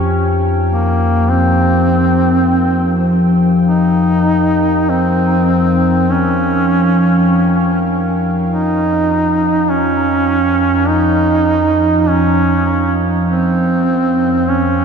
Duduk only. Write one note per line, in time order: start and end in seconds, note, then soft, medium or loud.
0.70 1.31 A#3 medium
1.30 3.09 C4 loud
3.67 4.91 D#4 medium
4.90 6.12 C4 medium
6.11 7.90 C#4 medium
8.49 9.71 D#4 medium
9.69 10.90 C#4 medium
10.89 12.11 D#4 loud
12.09 12.99 C#4 medium
13.29 14.51 C4 medium
14.49 14.85 C#4 medium